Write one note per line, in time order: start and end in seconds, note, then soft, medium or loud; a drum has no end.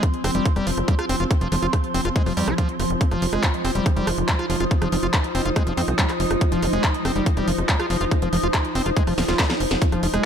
0.00 9.80 F3 medium
0.00 3.03 C4 medium
0.00 10.25 F4 medium
0.00 10.25 C5 medium
0.00 4.29 C6 medium
0.00 kick loud
0.00 cross-stick soft
0.00 closed hi-hat medium
0.14 closed hi-hat soft
0.24 0.30 F1 medium
0.24 0.31 C4 loud
0.24 cross-stick medium
0.24 open hi-hat loud
0.35 0.41 F1 medium
0.35 0.45 G3 medium
0.35 closed hi-hat medium
0.46 kick loud
0.46 closed hi-hat medium
0.56 0.62 F1 medium
0.56 0.66 G3 loud
0.56 cross-stick soft
0.56 closed hi-hat medium
0.67 0.73 F1 medium
0.67 0.71 F3 medium
0.67 open hi-hat loud
0.77 0.83 F1 medium
0.77 cross-stick soft
0.77 closed hi-hat medium
0.88 0.95 G3 medium
0.88 kick loud
0.88 closed hi-hat medium
0.99 1.05 F4 medium
0.99 cross-stick medium
0.99 closed hi-hat medium
1.09 1.15 F1 medium
1.09 1.16 C4 loud
1.09 open hi-hat loud
1.20 1.26 F1 medium
1.20 1.24 F4 medium
1.20 closed hi-hat soft
1.31 kick loud
1.31 cross-stick soft
1.31 closed hi-hat medium
1.41 1.47 F1 medium
1.41 1.48 F3 medium
1.41 closed hi-hat soft
1.52 1.58 F1 medium
1.52 1.56 F3 medium
1.52 cross-stick soft
1.52 open hi-hat loud
1.63 1.68 F1 medium
1.63 1.67 F4 loud
1.63 closed hi-hat medium
1.73 kick loud
1.73 cross-stick medium
1.73 closed hi-hat medium
1.84 closed hi-hat soft
1.94 2.00 F1 medium
1.94 2.01 C4 loud
1.94 open hi-hat loud
2.05 2.11 F1 medium
2.05 2.09 F4 medium
2.05 cross-stick soft
2.05 closed hi-hat medium
2.16 2.23 G#3 loud
2.16 kick loud
2.16 closed hi-hat medium
2.26 2.32 F1 medium
2.26 2.33 F3 medium
2.26 cross-stick soft
2.26 open hi-hat medium
2.37 2.43 F2 medium
2.37 2.49 G3 loud
2.37 open hi-hat loud
2.48 2.54 C2 medium
2.48 2.54 F4 medium
2.48 cross-stick medium
2.48 closed hi-hat soft
2.58 2.68 F3 loud
2.58 kick loud
2.58 closed hi-hat medium
2.69 closed hi-hat soft
2.80 2.86 F1 medium
2.80 cross-stick soft
2.80 open hi-hat loud
2.90 2.96 F1 medium
2.90 closed hi-hat soft
3.01 9.84 D#4 medium
3.01 kick loud
3.01 closed hi-hat medium
3.11 3.17 F1 medium
3.11 3.22 F3 medium
3.11 cross-stick soft
3.11 closed hi-hat medium
3.22 3.28 F1 medium
3.22 3.26 F3 medium
3.22 open hi-hat loud
3.33 3.39 F1 medium
3.33 3.43 G#3 loud
3.33 cross-stick medium
3.33 closed hi-hat medium
3.43 kick loud
3.43 clap loud
3.43 closed hi-hat medium
3.54 closed hi-hat medium
3.65 3.71 F1 loud
3.65 3.71 C4 loud
3.65 cross-stick soft
3.65 open hi-hat loud
3.75 3.81 F1 medium
3.75 3.85 G3 medium
3.75 closed hi-hat soft
3.86 kick loud
3.86 cross-stick soft
3.86 closed hi-hat medium
3.97 4.03 F1 medium
3.97 4.07 G3 loud
3.97 closed hi-hat soft
4.07 4.13 F1 medium
4.07 4.11 F3 medium
4.07 cross-stick medium
4.07 open hi-hat loud
4.18 4.24 F1 medium
4.18 closed hi-hat medium
4.27 4.35 G3 medium
4.27 10.25 D#6 medium
4.27 kick loud
4.27 clap loud
4.27 closed hi-hat medium
4.39 4.46 F4 medium
4.39 cross-stick soft
4.39 closed hi-hat soft
4.50 4.56 F1 medium
4.50 4.57 F3 loud
4.50 open hi-hat loud
4.60 4.66 F1 medium
4.60 4.64 F4 medium
4.60 cross-stick soft
4.60 closed hi-hat medium
4.71 kick loud
4.71 closed hi-hat medium
4.82 4.88 F1 medium
4.82 4.88 F3 medium
4.82 cross-stick medium
4.82 closed hi-hat medium
4.92 4.98 F1 loud
4.92 4.96 F3 medium
4.92 open hi-hat loud
5.03 5.09 F1 medium
5.03 5.07 F4 loud
5.03 closed hi-hat medium
5.14 kick loud
5.14 cross-stick soft
5.14 clap loud
5.14 closed hi-hat medium
5.24 closed hi-hat medium
5.35 5.41 F1 loud
5.35 5.42 C4 loud
5.35 open hi-hat loud
5.45 5.51 F1 medium
5.45 5.50 F4 medium
5.45 closed hi-hat medium
5.56 5.63 G#3 loud
5.56 kick loud
5.56 cross-stick medium
5.56 closed hi-hat medium
5.67 5.73 F1 medium
5.67 5.74 F3 medium
5.67 closed hi-hat medium
5.77 5.83 F2 medium
5.77 5.81 C4 loud
5.77 open hi-hat loud
5.88 5.94 C2 medium
5.88 cross-stick soft
5.88 closed hi-hat medium
5.99 6.05 G3 medium
5.99 kick loud
5.99 clap loud
5.99 closed hi-hat medium
6.09 cross-stick soft
6.09 clap soft
6.09 closed hi-hat medium
6.20 6.26 F1 medium
6.20 open hi-hat loud
6.31 6.37 F1 medium
6.31 cross-stick medium
6.31 closed hi-hat medium
6.41 kick loud
6.41 closed hi-hat medium
6.52 6.58 F1 medium
6.52 6.62 F3 medium
6.52 closed hi-hat medium
6.62 6.68 F1 loud
6.62 6.67 F3 medium
6.62 cross-stick soft
6.62 open hi-hat loud
6.73 6.79 F1 medium
6.73 6.83 G#3 loud
6.73 closed hi-hat medium
6.84 kick loud
6.84 cross-stick soft
6.84 clap loud
6.84 closed hi-hat medium
6.94 closed hi-hat medium
7.05 7.11 F1 loud
7.05 7.12 C4 loud
7.05 cross-stick medium
7.05 open hi-hat loud
7.16 7.22 F1 medium
7.16 7.26 G3 medium
7.16 closed hi-hat medium
7.26 kick loud
7.26 closed hi-hat medium
7.37 7.43 F1 medium
7.37 7.47 G3 loud
7.37 cross-stick soft
7.37 closed hi-hat medium
7.48 7.54 F1 medium
7.48 7.52 F3 medium
7.48 open hi-hat loud
7.58 7.64 F1 medium
7.58 cross-stick soft
7.58 closed hi-hat medium
7.69 7.76 G3 medium
7.69 kick loud
7.69 clap loud
7.69 closed hi-hat medium
7.79 7.86 F4 medium
7.79 cross-stick medium
7.79 closed hi-hat medium
7.90 7.96 F1 medium
7.90 7.97 F3 loud
7.90 open hi-hat loud
8.01 8.07 F1 medium
8.01 8.05 F4 medium
8.01 closed hi-hat medium
8.11 kick loud
8.11 cross-stick soft
8.11 closed hi-hat medium
8.22 8.28 F1 medium
8.22 8.29 F3 medium
8.22 closed hi-hat medium
8.33 8.39 F1 loud
8.33 8.37 F3 medium
8.33 cross-stick soft
8.33 open hi-hat loud
8.43 8.49 F1 medium
8.43 8.47 F4 loud
8.43 closed hi-hat medium
8.54 kick loud
8.54 cross-stick medium
8.54 clap loud
8.54 closed hi-hat medium
8.65 closed hi-hat medium
8.75 8.81 F1 loud
8.75 8.82 C4 loud
8.75 open hi-hat loud
8.86 8.92 F1 medium
8.86 8.90 F4 medium
8.86 cross-stick soft
8.86 closed hi-hat medium
8.97 9.03 G#3 loud
8.97 kick loud
8.97 closed hi-hat medium
9.07 9.13 F1 medium
9.07 9.14 F3 medium
9.07 cross-stick soft
9.07 open hi-hat medium
9.18 9.24 D#1 medium
9.18 9.25 F3 medium
9.18 snare medium
9.18 open hi-hat loud
9.28 9.34 D#1 medium
9.28 9.41 F4 medium
9.28 snare medium
9.28 closed hi-hat medium
9.39 9.46 G3 loud
9.39 kick loud
9.39 snare medium
9.39 clap loud
9.39 closed hi-hat medium
9.50 9.54 F3 medium
9.50 snare medium
9.50 closed hi-hat medium
9.60 9.66 F1 medium
9.60 open hi-hat loud
9.71 9.77 F1 medium
9.71 snare medium
9.71 closed hi-hat medium
9.82 10.25 F3 medium
9.82 10.25 C4 medium
9.82 kick loud
9.82 closed hi-hat medium
9.92 9.98 F1 medium
9.92 10.02 F3 medium
9.92 cross-stick soft
9.92 closed hi-hat medium
10.03 10.09 F1 medium
10.03 10.07 F3 medium
10.03 open hi-hat loud
10.14 10.20 F1 medium
10.14 10.24 G#3 loud
10.14 cross-stick medium
10.14 closed hi-hat medium